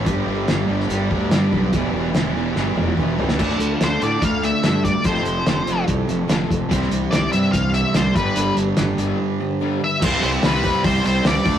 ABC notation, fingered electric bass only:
X:1
M:4/4
L:1/8
Q:1/4=145
K:C
V:1 name="Fingered electric bass" clef=bass
G,,, G,,, G,,, G,,, G,,, D,, G,, B,,, | E,,, E,,, E,,, E,,, G,,, E,,, E,,, ^C,, | D,, D,, D,, A,, D,,2 G,,2 | F,,, F,,, F,,, F,,, C,, F,,, F,,, F,,, |
C,, C,, C,, G,, C,,2 C,, G,,, | G,,, G,,, G,,, G,,, z4 | C,, C,, C,,2 C,, C,, ^C,, D,, |]